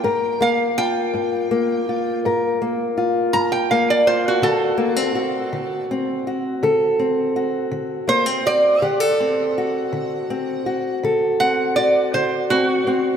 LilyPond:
<<
  \new Staff \with { instrumentName = "Resonator guitar played with a steel bar" } { \time 12/8 \key d \phrygian \tempo 4. = 55 g''8 f''8 g''2 r4. bes''16 g''16 f''16 d''16 c''16 fis'16 | a'2 r2. c''8 d''8 | fis''2. r8 fis''8 d''8 c''8 fis'4 | }
  \new Staff \with { instrumentName = "Steel-string acoustic guitar" } { \time 12/8 \key d \phrygian << { <bes bes'>8 bes8 f'4 bes8 f'8 bes'8 bes8 f'4 bes8 f'8 | fis'8 bes16 c'16 fis'4 c'8 fis'8 a'8 c'8 fis'4 bes16 c'16 fis'8 | g'16 a'16 c'8 fis'4 c'8 fis'8 a'8 c'8 fis'4 c'8 c'8 | } \\ { g,4 r8 g,4 r8 g,4 r8 g,4 r8 | d4 r8 d4 r8 d4 r8 d4 r8 | d4 r8 d4 r8 d4 r8 d4 r8 | } >> }
>>